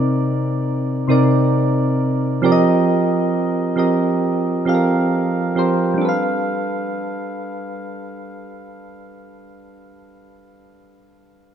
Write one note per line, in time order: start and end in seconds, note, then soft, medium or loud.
0.00 0.16 C3 loud
0.00 0.17 C4 loud
0.00 0.17 D#4 loud
0.00 0.18 A#4 medium
0.00 0.21 D5 loud
1.08 2.08 C3 medium
1.08 2.08 C4 medium
1.08 2.09 D#4 medium
1.08 2.09 A#4 medium
1.08 2.10 D5 medium
2.42 3.42 F3 loud
2.42 3.42 C4 medium
2.42 3.43 G4 medium
2.42 3.43 A#4 medium
2.42 2.51 D5 medium
2.52 3.47 D#5 loud
3.76 4.44 F3 medium
3.76 4.45 C4 medium
3.76 4.45 G4 medium
3.76 4.45 A#4 medium
3.76 4.46 D#5 medium
4.65 5.34 F3 medium
4.65 5.34 C4 medium
4.65 5.35 G4 medium
4.65 4.74 A4 medium
4.65 5.36 F5 medium
4.75 5.38 A#4 medium
5.55 5.90 F3 medium
5.55 5.90 C4 medium
5.55 5.91 G4 medium
5.55 5.91 A#4 medium
5.55 5.91 C5 medium
5.94 9.34 G3 medium
5.94 9.38 D4 medium
6.01 9.41 A4 medium
6.01 9.45 B4 medium
6.09 9.48 F5 medium